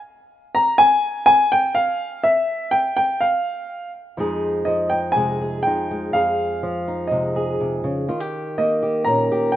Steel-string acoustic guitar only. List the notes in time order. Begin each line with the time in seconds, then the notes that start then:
4.17 F2 F3 G#3 D#4 G#4
4.67 F3
4.92 D#4
5.16 C3 G#3
5.42 G#4
5.66 F3 D#4
5.91 G#3
6.14 F2 G#4
6.63 F3
6.88 D#4
7.11 C3 G#3
7.36 G#4
7.60 C3
7.84 C#3
8.08 D#3 F4
8.20 G4
8.58 A#3
8.83 G4
9.07 A#2 C#4
9.32 G4